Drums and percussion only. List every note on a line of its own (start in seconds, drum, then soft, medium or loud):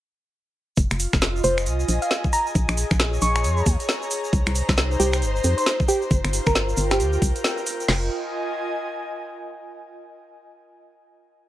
0.77 kick loud
0.77 closed hi-hat medium
0.77 shaker medium
0.91 finger snap medium
0.91 closed hi-hat medium
0.91 shaker soft
1.00 open hi-hat loud
1.00 shaker loud
1.13 finger snap medium
1.13 kick loud
1.13 snare medium
1.13 shaker soft
1.22 snare loud
1.22 closed hi-hat medium
1.22 shaker soft
1.36 shaker soft
1.44 open hi-hat medium
1.44 shaker medium
1.58 finger snap medium
1.58 closed hi-hat soft
1.58 shaker soft
1.66 closed hi-hat medium
1.66 shaker soft
1.80 shaker soft
1.89 open hi-hat loud
1.89 shaker medium
2.02 closed hi-hat medium
2.02 shaker soft
2.11 snare loud
2.11 closed hi-hat medium
2.11 shaker soft
2.24 kick loud
2.24 shaker soft
2.33 open hi-hat loud
2.33 shaker loud
2.47 shaker soft
2.55 kick loud
2.55 closed hi-hat medium
2.55 shaker medium
2.68 finger snap medium
2.68 closed hi-hat medium
2.68 shaker soft
2.77 open hi-hat loud
2.77 shaker loud
2.91 finger snap medium
2.91 kick loud
2.91 shaker soft
3.00 snare loud
3.00 closed hi-hat medium
3.00 shaker medium
3.13 shaker soft
3.22 open hi-hat loud
3.22 shaker loud
3.36 finger snap medium
3.36 closed hi-hat soft
3.36 shaker soft
3.44 closed hi-hat medium
3.44 shaker soft
3.57 shaker soft
3.66 kick loud
3.66 open hi-hat loud
3.66 shaker medium
3.80 closed hi-hat medium
3.80 shaker soft
3.89 snare loud
3.89 closed hi-hat medium
3.89 shaker medium
4.02 shaker soft
4.11 open hi-hat loud
4.11 shaker loud
4.24 shaker soft
4.33 kick loud
4.33 closed hi-hat medium
4.33 shaker medium
4.46 finger snap medium
4.46 closed hi-hat medium
4.46 shaker soft
4.55 open hi-hat loud
4.55 shaker loud
4.69 finger snap medium
4.69 kick loud
4.69 snare medium
4.69 shaker soft
4.77 snare loud
4.77 closed hi-hat medium
4.77 shaker medium
4.91 shaker soft
5.00 open hi-hat medium
5.00 shaker loud
5.13 finger snap medium
5.13 closed hi-hat soft
5.13 shaker soft
5.22 closed hi-hat medium
5.22 shaker medium
5.36 shaker soft
5.44 open hi-hat loud
5.44 shaker loud
5.58 closed hi-hat medium
5.58 shaker soft
5.66 snare loud
5.66 closed hi-hat medium
5.66 shaker medium
5.80 kick loud
5.80 shaker soft
5.89 open hi-hat medium
5.89 shaker loud
6.02 shaker soft
6.11 kick loud
6.11 closed hi-hat medium
6.11 shaker medium
6.25 finger snap medium
6.25 closed hi-hat medium
6.25 shaker soft
6.33 open hi-hat loud
6.33 shaker loud
6.46 finger snap medium
6.46 kick loud
6.46 shaker soft
6.55 snare loud
6.55 closed hi-hat medium
6.55 shaker medium
6.69 shaker soft
6.77 open hi-hat medium
6.77 shaker loud
6.91 finger snap medium
6.91 snare medium
6.91 closed hi-hat soft
6.91 shaker soft
7.00 closed hi-hat medium
7.00 shaker medium
7.13 shaker soft
7.22 kick loud
7.22 open hi-hat loud
7.22 shaker medium
7.36 closed hi-hat medium
7.36 shaker soft
7.44 snare loud
7.44 closed hi-hat medium
7.44 shaker medium
7.57 shaker soft
7.67 open hi-hat medium
7.67 shaker loud
7.80 closed hi-hat soft
7.80 shaker soft
7.88 snare loud
7.88 crash medium